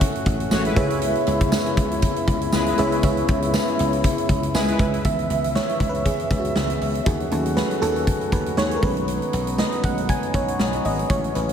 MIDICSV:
0, 0, Header, 1, 6, 480
1, 0, Start_track
1, 0, Key_signature, 4, "minor"
1, 0, Tempo, 504202
1, 968, Time_signature, 4, 2, 24, 8
1, 10975, End_track
2, 0, Start_track
2, 0, Title_t, "FM electric piano"
2, 0, Program_c, 0, 5
2, 0, Control_c, 0, 64, 127
2, 0, Note_on_c, 0, 45, 78
2, 0, Note_on_c, 0, 64, 91
2, 0, Note_on_c, 0, 66, 81
2, 0, Note_on_c, 0, 69, 82
2, 0, Note_on_c, 0, 73, 80
2, 0, Note_on_c, 0, 76, 97
2, 726, Note_off_c, 0, 64, 0
2, 726, Note_on_c, 0, 64, 88
2, 728, Note_on_c, 0, 68, 85
2, 730, Note_on_c, 0, 71, 86
2, 731, Note_off_c, 0, 73, 0
2, 731, Note_on_c, 0, 73, 91
2, 733, Note_on_c, 0, 49, 81
2, 736, Note_off_c, 0, 76, 0
2, 736, Note_on_c, 0, 76, 101
2, 739, Control_c, 0, 64, 0
2, 742, Note_off_c, 0, 66, 0
2, 744, Note_off_c, 0, 69, 0
2, 748, Note_off_c, 0, 45, 0
2, 913, Control_c, 0, 64, 127
2, 1412, Note_off_c, 0, 49, 0
2, 1535, Note_off_c, 0, 64, 0
2, 1536, Note_off_c, 0, 68, 0
2, 1537, Note_off_c, 0, 71, 0
2, 1538, Note_off_c, 0, 73, 0
2, 1540, Note_off_c, 0, 76, 0
2, 2646, Note_on_c, 0, 64, 88
2, 2649, Note_on_c, 0, 68, 82
2, 2651, Note_on_c, 0, 71, 86
2, 2652, Note_on_c, 0, 49, 75
2, 2656, Note_on_c, 0, 73, 82
2, 2657, Note_on_c, 0, 76, 99
2, 2851, Note_off_c, 0, 64, 0
2, 2853, Note_off_c, 0, 68, 0
2, 2854, Note_off_c, 0, 71, 0
2, 2856, Note_off_c, 0, 73, 0
2, 2857, Note_off_c, 0, 76, 0
2, 2886, Note_on_c, 0, 64, 89
2, 2889, Note_on_c, 0, 68, 83
2, 2891, Note_on_c, 0, 71, 79
2, 2893, Note_on_c, 0, 73, 87
2, 2897, Note_on_c, 0, 76, 102
2, 3332, Note_off_c, 0, 49, 0
2, 3696, Note_off_c, 0, 64, 0
2, 3697, Note_off_c, 0, 68, 0
2, 3698, Note_off_c, 0, 71, 0
2, 3699, Note_off_c, 0, 73, 0
2, 3701, Note_off_c, 0, 76, 0
2, 4329, Note_on_c, 0, 80, 72
2, 4336, Note_on_c, 0, 75, 63
2, 4557, Note_off_c, 0, 80, 0
2, 4560, Note_off_c, 0, 75, 0
2, 4568, Note_on_c, 0, 76, 70
2, 4574, Note_on_c, 0, 71, 59
2, 4799, Note_off_c, 0, 76, 0
2, 4804, Note_on_c, 0, 52, 53
2, 4809, Note_on_c, 0, 59, 51
2, 4811, Note_on_c, 0, 76, 106
2, 4817, Note_on_c, 0, 51, 63
2, 4820, Control_c, 0, 64, 0
2, 4982, Control_c, 0, 64, 127
2, 5028, Note_off_c, 0, 71, 0
2, 5256, Note_off_c, 0, 76, 0
2, 5288, Note_on_c, 0, 73, 91
2, 5490, Note_off_c, 0, 52, 0
2, 5493, Note_off_c, 0, 59, 0
2, 5497, Note_off_c, 0, 51, 0
2, 5610, Note_on_c, 0, 71, 84
2, 5618, Note_off_c, 0, 73, 0
2, 5766, Note_on_c, 0, 68, 79
2, 5774, Note_off_c, 0, 71, 0
2, 6088, Note_on_c, 0, 66, 65
2, 6097, Note_off_c, 0, 68, 0
2, 6311, Note_off_c, 0, 66, 0
2, 6726, Note_on_c, 0, 68, 80
2, 6743, Control_c, 0, 64, 0
2, 6882, Control_c, 0, 64, 127
2, 6956, Note_on_c, 0, 54, 54
2, 6960, Note_on_c, 0, 57, 48
2, 6965, Note_on_c, 0, 69, 74
2, 6967, Note_on_c, 0, 61, 59
2, 6975, Note_off_c, 0, 68, 0
2, 7190, Note_off_c, 0, 69, 0
2, 7202, Note_on_c, 0, 71, 89
2, 7441, Note_on_c, 0, 69, 90
2, 7453, Note_off_c, 0, 71, 0
2, 7926, Note_on_c, 0, 71, 90
2, 7939, Note_off_c, 0, 69, 0
2, 8166, Note_on_c, 0, 73, 105
2, 8175, Note_off_c, 0, 71, 0
2, 8335, Note_off_c, 0, 73, 0
2, 8344, Note_on_c, 0, 70, 69
2, 8364, Note_off_c, 0, 54, 0
2, 8366, Note_off_c, 0, 57, 0
2, 8370, Note_off_c, 0, 61, 0
2, 8406, Note_off_c, 0, 70, 0
2, 8406, Note_on_c, 0, 51, 57
2, 8410, Note_on_c, 0, 56, 53
2, 8412, Note_on_c, 0, 71, 95
2, 8415, Note_on_c, 0, 57, 51
2, 8417, Note_on_c, 0, 61, 61
2, 8419, Control_c, 0, 64, 0
2, 8592, Control_c, 0, 64, 127
2, 8736, Note_off_c, 0, 51, 0
2, 8737, Note_off_c, 0, 56, 0
2, 8740, Note_off_c, 0, 57, 0
2, 8742, Note_off_c, 0, 61, 0
2, 8857, Note_off_c, 0, 71, 0
2, 9131, Note_on_c, 0, 75, 94
2, 9367, Note_on_c, 0, 56, 46
2, 9368, Note_on_c, 0, 51, 49
2, 9371, Note_on_c, 0, 57, 45
2, 9374, Note_on_c, 0, 61, 56
2, 9375, Note_on_c, 0, 78, 95
2, 9377, Note_off_c, 0, 75, 0
2, 9584, Note_off_c, 0, 51, 0
2, 9584, Note_off_c, 0, 56, 0
2, 9586, Note_off_c, 0, 57, 0
2, 9588, Note_off_c, 0, 61, 0
2, 9595, Note_off_c, 0, 78, 0
2, 9611, Note_on_c, 0, 80, 99
2, 9853, Note_on_c, 0, 73, 98
2, 9857, Note_off_c, 0, 80, 0
2, 10297, Note_off_c, 0, 73, 0
2, 10334, Note_on_c, 0, 75, 92
2, 10569, Note_on_c, 0, 73, 98
2, 10578, Note_off_c, 0, 75, 0
2, 10582, Control_c, 0, 64, 0
2, 10749, Control_c, 0, 64, 127
2, 10809, Note_on_c, 0, 71, 82
2, 10816, Note_off_c, 0, 73, 0
2, 10975, Note_off_c, 0, 71, 0
2, 10975, End_track
3, 0, Start_track
3, 0, Title_t, "Analog polysynth"
3, 0, Program_c, 1, 90
3, 488, Note_on_c, 1, 57, 100
3, 490, Note_on_c, 1, 66, 100
3, 491, Note_on_c, 1, 73, 111
3, 601, Note_off_c, 1, 57, 0
3, 601, Note_off_c, 1, 66, 0
3, 602, Note_off_c, 1, 73, 0
3, 620, Note_on_c, 1, 64, 97
3, 620, Note_on_c, 1, 71, 112
3, 621, Note_on_c, 1, 56, 91
3, 951, Note_off_c, 1, 56, 0
3, 951, Note_off_c, 1, 64, 0
3, 951, Note_off_c, 1, 71, 0
3, 2411, Note_on_c, 1, 71, 109
3, 2412, Note_on_c, 1, 56, 100
3, 2412, Note_on_c, 1, 64, 98
3, 2522, Note_off_c, 1, 71, 0
3, 2523, Note_off_c, 1, 56, 0
3, 2523, Note_off_c, 1, 64, 0
3, 2539, Note_on_c, 1, 64, 97
3, 2540, Note_on_c, 1, 56, 100
3, 2540, Note_on_c, 1, 71, 103
3, 2870, Note_off_c, 1, 64, 0
3, 2871, Note_off_c, 1, 56, 0
3, 2871, Note_off_c, 1, 71, 0
3, 4325, Note_on_c, 1, 64, 105
3, 4326, Note_on_c, 1, 71, 107
3, 4327, Note_on_c, 1, 56, 102
3, 4439, Note_off_c, 1, 64, 0
3, 4439, Note_off_c, 1, 71, 0
3, 4440, Note_off_c, 1, 56, 0
3, 4453, Note_on_c, 1, 71, 107
3, 4454, Note_on_c, 1, 64, 95
3, 4456, Note_on_c, 1, 56, 96
3, 4787, Note_off_c, 1, 64, 0
3, 4787, Note_off_c, 1, 71, 0
3, 4789, Note_off_c, 1, 56, 0
3, 10975, End_track
4, 0, Start_track
4, 0, Title_t, "Brass ensemble"
4, 0, Program_c, 2, 61
4, 0, Note_on_c, 2, 57, 77
4, 0, Note_on_c, 2, 61, 70
4, 0, Note_on_c, 2, 66, 82
4, 692, Note_off_c, 2, 61, 0
4, 692, Note_off_c, 2, 66, 0
4, 693, Note_off_c, 2, 57, 0
4, 725, Note_on_c, 2, 49, 78
4, 726, Note_on_c, 2, 64, 80
4, 727, Note_on_c, 2, 59, 66
4, 4643, Note_off_c, 2, 49, 0
4, 4643, Note_off_c, 2, 59, 0
4, 4643, Note_off_c, 2, 64, 0
4, 4805, Note_on_c, 2, 76, 80
4, 4811, Note_on_c, 2, 59, 64
4, 4812, Note_on_c, 2, 49, 68
4, 6707, Note_off_c, 2, 76, 0
4, 6711, Note_off_c, 2, 49, 0
4, 6711, Note_off_c, 2, 59, 0
4, 6721, Note_on_c, 2, 51, 73
4, 6723, Note_on_c, 2, 61, 65
4, 6725, Note_on_c, 2, 66, 80
4, 6726, Note_on_c, 2, 54, 63
4, 8388, Note_off_c, 2, 51, 0
4, 8389, Note_off_c, 2, 61, 0
4, 8390, Note_off_c, 2, 66, 0
4, 8403, Note_on_c, 2, 63, 77
4, 8407, Note_on_c, 2, 59, 67
4, 10544, Note_off_c, 2, 63, 0
4, 10546, Note_off_c, 2, 59, 0
4, 10563, Note_on_c, 2, 61, 83
4, 10568, Note_on_c, 2, 56, 74
4, 10975, Note_off_c, 2, 54, 0
4, 10975, Note_off_c, 2, 56, 0
4, 10975, Note_off_c, 2, 61, 0
4, 10975, End_track
5, 0, Start_track
5, 0, Title_t, "Slap bass"
5, 0, Program_c, 3, 36
5, 249, Note_on_c, 3, 33, 105
5, 421, Note_off_c, 3, 33, 0
5, 493, Note_on_c, 3, 33, 95
5, 664, Note_off_c, 3, 33, 0
5, 732, Note_on_c, 3, 37, 99
5, 1076, Note_off_c, 3, 37, 0
5, 1211, Note_on_c, 3, 37, 98
5, 1478, Note_off_c, 3, 37, 0
5, 1688, Note_on_c, 3, 37, 105
5, 1956, Note_off_c, 3, 37, 0
5, 2168, Note_on_c, 3, 37, 100
5, 2341, Note_off_c, 3, 37, 0
5, 2412, Note_on_c, 3, 37, 96
5, 2584, Note_off_c, 3, 37, 0
5, 2655, Note_on_c, 3, 37, 100
5, 2825, Note_off_c, 3, 37, 0
5, 2886, Note_on_c, 3, 37, 101
5, 3060, Note_off_c, 3, 37, 0
5, 3131, Note_on_c, 3, 37, 103
5, 3398, Note_off_c, 3, 37, 0
5, 3618, Note_on_c, 3, 37, 104
5, 3882, Note_off_c, 3, 37, 0
5, 4086, Note_on_c, 3, 37, 99
5, 4260, Note_off_c, 3, 37, 0
5, 4323, Note_on_c, 3, 37, 103
5, 4498, Note_off_c, 3, 37, 0
5, 4567, Note_on_c, 3, 37, 94
5, 4740, Note_off_c, 3, 37, 0
5, 4806, Note_on_c, 3, 37, 99
5, 4979, Note_off_c, 3, 37, 0
5, 5044, Note_on_c, 3, 37, 88
5, 5313, Note_off_c, 3, 37, 0
5, 5525, Note_on_c, 3, 37, 96
5, 5794, Note_off_c, 3, 37, 0
5, 6005, Note_on_c, 3, 37, 94
5, 6179, Note_off_c, 3, 37, 0
5, 6249, Note_on_c, 3, 37, 87
5, 6422, Note_off_c, 3, 37, 0
5, 6486, Note_on_c, 3, 37, 85
5, 6660, Note_off_c, 3, 37, 0
5, 6725, Note_on_c, 3, 39, 101
5, 6899, Note_off_c, 3, 39, 0
5, 6968, Note_on_c, 3, 39, 95
5, 7236, Note_off_c, 3, 39, 0
5, 7445, Note_on_c, 3, 39, 89
5, 7714, Note_off_c, 3, 39, 0
5, 7924, Note_on_c, 3, 39, 96
5, 8098, Note_off_c, 3, 39, 0
5, 8166, Note_on_c, 3, 39, 84
5, 8340, Note_off_c, 3, 39, 0
5, 8405, Note_on_c, 3, 35, 82
5, 8752, Note_off_c, 3, 35, 0
5, 8885, Note_on_c, 3, 35, 103
5, 9154, Note_off_c, 3, 35, 0
5, 9367, Note_on_c, 3, 35, 98
5, 9635, Note_off_c, 3, 35, 0
5, 9846, Note_on_c, 3, 35, 95
5, 10019, Note_off_c, 3, 35, 0
5, 10091, Note_on_c, 3, 35, 90
5, 10263, Note_off_c, 3, 35, 0
5, 10328, Note_on_c, 3, 32, 80
5, 10501, Note_off_c, 3, 32, 0
5, 10566, Note_on_c, 3, 33, 96
5, 10740, Note_off_c, 3, 33, 0
5, 10812, Note_on_c, 3, 33, 87
5, 10975, Note_off_c, 3, 33, 0
5, 10975, End_track
6, 0, Start_track
6, 0, Title_t, "Drums"
6, 10, Note_on_c, 9, 42, 91
6, 11, Note_on_c, 9, 36, 92
6, 105, Note_off_c, 9, 42, 0
6, 106, Note_off_c, 9, 36, 0
6, 146, Note_on_c, 9, 42, 50
6, 242, Note_off_c, 9, 42, 0
6, 249, Note_on_c, 9, 36, 96
6, 250, Note_on_c, 9, 42, 74
6, 344, Note_off_c, 9, 36, 0
6, 346, Note_off_c, 9, 42, 0
6, 381, Note_on_c, 9, 42, 58
6, 476, Note_off_c, 9, 42, 0
6, 487, Note_on_c, 9, 38, 102
6, 487, Note_on_c, 9, 54, 64
6, 582, Note_off_c, 9, 54, 0
6, 583, Note_off_c, 9, 38, 0
6, 618, Note_on_c, 9, 42, 58
6, 713, Note_off_c, 9, 42, 0
6, 728, Note_on_c, 9, 36, 104
6, 728, Note_on_c, 9, 42, 64
6, 823, Note_off_c, 9, 36, 0
6, 823, Note_off_c, 9, 42, 0
6, 859, Note_on_c, 9, 42, 55
6, 955, Note_off_c, 9, 42, 0
6, 967, Note_on_c, 9, 42, 91
6, 1062, Note_off_c, 9, 42, 0
6, 1098, Note_on_c, 9, 42, 45
6, 1193, Note_off_c, 9, 42, 0
6, 1205, Note_on_c, 9, 42, 74
6, 1300, Note_off_c, 9, 42, 0
6, 1339, Note_on_c, 9, 42, 67
6, 1342, Note_on_c, 9, 36, 92
6, 1434, Note_off_c, 9, 42, 0
6, 1437, Note_off_c, 9, 36, 0
6, 1446, Note_on_c, 9, 54, 65
6, 1448, Note_on_c, 9, 38, 107
6, 1541, Note_off_c, 9, 54, 0
6, 1543, Note_off_c, 9, 38, 0
6, 1581, Note_on_c, 9, 42, 50
6, 1677, Note_off_c, 9, 42, 0
6, 1687, Note_on_c, 9, 36, 98
6, 1688, Note_on_c, 9, 42, 86
6, 1782, Note_off_c, 9, 36, 0
6, 1783, Note_off_c, 9, 42, 0
6, 1822, Note_on_c, 9, 42, 55
6, 1917, Note_off_c, 9, 42, 0
6, 1923, Note_on_c, 9, 42, 94
6, 1929, Note_on_c, 9, 36, 96
6, 2019, Note_off_c, 9, 42, 0
6, 2024, Note_off_c, 9, 36, 0
6, 2059, Note_on_c, 9, 42, 52
6, 2154, Note_off_c, 9, 42, 0
6, 2165, Note_on_c, 9, 42, 71
6, 2167, Note_on_c, 9, 36, 95
6, 2260, Note_off_c, 9, 42, 0
6, 2262, Note_off_c, 9, 36, 0
6, 2298, Note_on_c, 9, 42, 60
6, 2393, Note_off_c, 9, 42, 0
6, 2404, Note_on_c, 9, 38, 101
6, 2404, Note_on_c, 9, 54, 65
6, 2499, Note_off_c, 9, 38, 0
6, 2499, Note_off_c, 9, 54, 0
6, 2535, Note_on_c, 9, 42, 58
6, 2630, Note_off_c, 9, 42, 0
6, 2643, Note_on_c, 9, 42, 64
6, 2738, Note_off_c, 9, 42, 0
6, 2779, Note_on_c, 9, 42, 59
6, 2874, Note_off_c, 9, 42, 0
6, 2884, Note_on_c, 9, 42, 88
6, 2887, Note_on_c, 9, 36, 118
6, 2979, Note_off_c, 9, 42, 0
6, 2982, Note_off_c, 9, 36, 0
6, 3017, Note_on_c, 9, 42, 45
6, 3113, Note_off_c, 9, 42, 0
6, 3124, Note_on_c, 9, 42, 76
6, 3130, Note_on_c, 9, 36, 113
6, 3220, Note_off_c, 9, 42, 0
6, 3225, Note_off_c, 9, 36, 0
6, 3259, Note_on_c, 9, 42, 68
6, 3354, Note_off_c, 9, 42, 0
6, 3367, Note_on_c, 9, 54, 64
6, 3368, Note_on_c, 9, 38, 108
6, 3462, Note_off_c, 9, 54, 0
6, 3464, Note_off_c, 9, 38, 0
6, 3501, Note_on_c, 9, 42, 47
6, 3596, Note_off_c, 9, 42, 0
6, 3608, Note_on_c, 9, 42, 87
6, 3703, Note_off_c, 9, 42, 0
6, 3739, Note_on_c, 9, 42, 53
6, 3834, Note_off_c, 9, 42, 0
6, 3846, Note_on_c, 9, 42, 93
6, 3848, Note_on_c, 9, 36, 94
6, 3941, Note_off_c, 9, 42, 0
6, 3943, Note_off_c, 9, 36, 0
6, 3979, Note_on_c, 9, 42, 50
6, 4074, Note_off_c, 9, 42, 0
6, 4086, Note_on_c, 9, 36, 91
6, 4086, Note_on_c, 9, 42, 73
6, 4181, Note_off_c, 9, 36, 0
6, 4181, Note_off_c, 9, 42, 0
6, 4218, Note_on_c, 9, 42, 63
6, 4314, Note_off_c, 9, 42, 0
6, 4328, Note_on_c, 9, 54, 65
6, 4329, Note_on_c, 9, 38, 103
6, 4423, Note_off_c, 9, 54, 0
6, 4424, Note_off_c, 9, 38, 0
6, 4458, Note_on_c, 9, 42, 56
6, 4553, Note_off_c, 9, 42, 0
6, 4564, Note_on_c, 9, 36, 97
6, 4569, Note_on_c, 9, 42, 62
6, 4659, Note_off_c, 9, 36, 0
6, 4665, Note_off_c, 9, 42, 0
6, 4700, Note_on_c, 9, 42, 55
6, 4795, Note_off_c, 9, 42, 0
6, 4806, Note_on_c, 9, 36, 111
6, 4806, Note_on_c, 9, 42, 82
6, 4901, Note_off_c, 9, 36, 0
6, 4901, Note_off_c, 9, 42, 0
6, 4938, Note_on_c, 9, 42, 42
6, 5034, Note_off_c, 9, 42, 0
6, 5046, Note_on_c, 9, 42, 69
6, 5141, Note_off_c, 9, 42, 0
6, 5180, Note_on_c, 9, 42, 62
6, 5275, Note_off_c, 9, 42, 0
6, 5288, Note_on_c, 9, 38, 95
6, 5383, Note_off_c, 9, 38, 0
6, 5419, Note_on_c, 9, 42, 44
6, 5515, Note_off_c, 9, 42, 0
6, 5524, Note_on_c, 9, 36, 86
6, 5526, Note_on_c, 9, 42, 80
6, 5619, Note_off_c, 9, 36, 0
6, 5621, Note_off_c, 9, 42, 0
6, 5659, Note_on_c, 9, 42, 50
6, 5754, Note_off_c, 9, 42, 0
6, 5763, Note_on_c, 9, 42, 84
6, 5765, Note_on_c, 9, 36, 81
6, 5859, Note_off_c, 9, 42, 0
6, 5860, Note_off_c, 9, 36, 0
6, 5897, Note_on_c, 9, 42, 46
6, 5993, Note_off_c, 9, 42, 0
6, 6004, Note_on_c, 9, 36, 90
6, 6005, Note_on_c, 9, 42, 65
6, 6099, Note_off_c, 9, 36, 0
6, 6101, Note_off_c, 9, 42, 0
6, 6137, Note_on_c, 9, 42, 55
6, 6232, Note_off_c, 9, 42, 0
6, 6242, Note_on_c, 9, 38, 93
6, 6337, Note_off_c, 9, 38, 0
6, 6375, Note_on_c, 9, 42, 53
6, 6471, Note_off_c, 9, 42, 0
6, 6487, Note_on_c, 9, 46, 60
6, 6582, Note_off_c, 9, 46, 0
6, 6618, Note_on_c, 9, 42, 54
6, 6713, Note_off_c, 9, 42, 0
6, 6723, Note_on_c, 9, 42, 87
6, 6724, Note_on_c, 9, 36, 110
6, 6819, Note_off_c, 9, 36, 0
6, 6819, Note_off_c, 9, 42, 0
6, 6856, Note_on_c, 9, 42, 42
6, 6951, Note_off_c, 9, 42, 0
6, 6963, Note_on_c, 9, 42, 69
6, 7058, Note_off_c, 9, 42, 0
6, 7097, Note_on_c, 9, 42, 60
6, 7192, Note_off_c, 9, 42, 0
6, 7205, Note_on_c, 9, 38, 99
6, 7300, Note_off_c, 9, 38, 0
6, 7338, Note_on_c, 9, 42, 46
6, 7433, Note_off_c, 9, 42, 0
6, 7445, Note_on_c, 9, 42, 79
6, 7541, Note_off_c, 9, 42, 0
6, 7578, Note_on_c, 9, 42, 49
6, 7673, Note_off_c, 9, 42, 0
6, 7683, Note_on_c, 9, 42, 86
6, 7685, Note_on_c, 9, 36, 87
6, 7778, Note_off_c, 9, 42, 0
6, 7780, Note_off_c, 9, 36, 0
6, 7817, Note_on_c, 9, 42, 44
6, 7912, Note_off_c, 9, 42, 0
6, 7921, Note_on_c, 9, 42, 69
6, 7923, Note_on_c, 9, 36, 85
6, 8017, Note_off_c, 9, 42, 0
6, 8018, Note_off_c, 9, 36, 0
6, 8055, Note_on_c, 9, 42, 56
6, 8151, Note_off_c, 9, 42, 0
6, 8161, Note_on_c, 9, 38, 90
6, 8257, Note_off_c, 9, 38, 0
6, 8293, Note_on_c, 9, 42, 52
6, 8388, Note_off_c, 9, 42, 0
6, 8402, Note_on_c, 9, 46, 60
6, 8403, Note_on_c, 9, 36, 100
6, 8497, Note_off_c, 9, 46, 0
6, 8499, Note_off_c, 9, 36, 0
6, 8536, Note_on_c, 9, 42, 51
6, 8631, Note_off_c, 9, 42, 0
6, 8641, Note_on_c, 9, 42, 81
6, 8736, Note_off_c, 9, 42, 0
6, 8776, Note_on_c, 9, 42, 43
6, 8871, Note_off_c, 9, 42, 0
6, 8882, Note_on_c, 9, 42, 73
6, 8977, Note_off_c, 9, 42, 0
6, 9015, Note_on_c, 9, 42, 62
6, 9110, Note_off_c, 9, 42, 0
6, 9124, Note_on_c, 9, 38, 96
6, 9219, Note_off_c, 9, 38, 0
6, 9256, Note_on_c, 9, 42, 45
6, 9351, Note_off_c, 9, 42, 0
6, 9365, Note_on_c, 9, 36, 87
6, 9365, Note_on_c, 9, 42, 80
6, 9460, Note_off_c, 9, 36, 0
6, 9461, Note_off_c, 9, 42, 0
6, 9497, Note_on_c, 9, 42, 51
6, 9593, Note_off_c, 9, 42, 0
6, 9603, Note_on_c, 9, 42, 84
6, 9607, Note_on_c, 9, 36, 87
6, 9698, Note_off_c, 9, 42, 0
6, 9702, Note_off_c, 9, 36, 0
6, 9737, Note_on_c, 9, 42, 47
6, 9832, Note_off_c, 9, 42, 0
6, 9844, Note_on_c, 9, 36, 89
6, 9844, Note_on_c, 9, 42, 69
6, 9939, Note_off_c, 9, 42, 0
6, 9940, Note_off_c, 9, 36, 0
6, 9978, Note_on_c, 9, 42, 60
6, 10074, Note_off_c, 9, 42, 0
6, 10086, Note_on_c, 9, 38, 95
6, 10181, Note_off_c, 9, 38, 0
6, 10213, Note_on_c, 9, 42, 53
6, 10309, Note_off_c, 9, 42, 0
6, 10326, Note_on_c, 9, 46, 58
6, 10421, Note_off_c, 9, 46, 0
6, 10463, Note_on_c, 9, 42, 53
6, 10558, Note_off_c, 9, 42, 0
6, 10565, Note_on_c, 9, 42, 84
6, 10566, Note_on_c, 9, 36, 109
6, 10660, Note_off_c, 9, 42, 0
6, 10661, Note_off_c, 9, 36, 0
6, 10701, Note_on_c, 9, 42, 42
6, 10797, Note_off_c, 9, 42, 0
6, 10806, Note_on_c, 9, 42, 72
6, 10901, Note_off_c, 9, 42, 0
6, 10938, Note_on_c, 9, 42, 61
6, 10975, Note_off_c, 9, 42, 0
6, 10975, End_track
0, 0, End_of_file